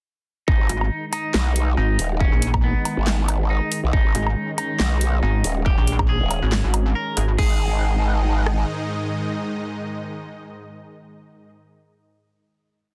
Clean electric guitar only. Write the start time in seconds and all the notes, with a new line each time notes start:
0.48 D#4
1.13 D#4
1.77 D#4
2.20 C#4
2.64 B3
3.50 D#4
3.93 D#4
4.58 D#4
5.23 D#4
5.66 G4
6.09 G#4
6.95 A#4
7.38 G#4